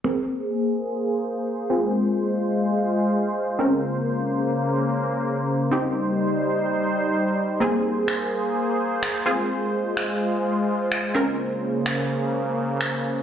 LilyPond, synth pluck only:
\new Staff \with { instrumentName = "Synth pluck" } { \time 4/4 \key aes \major \tempo 4 = 127 <c' aes' bes'>2.~ <c' aes' bes'>8 <c' f' aes'>8~ | <c' f' aes'>2.~ <c' f' aes'>8 <c' des' bes'>8~ | <c' des' bes'>2.~ <c' des' bes'>8 r8 | <c' ees' g'>1 |
<bes c' aes'>2.~ <bes c' aes'>8 <c' f' aes'>8~ | <c' f' aes'>2.~ <c' f' aes'>8 <c' des' bes'>8~ | <c' des' bes'>2.~ <c' des' bes'>8 r8 | }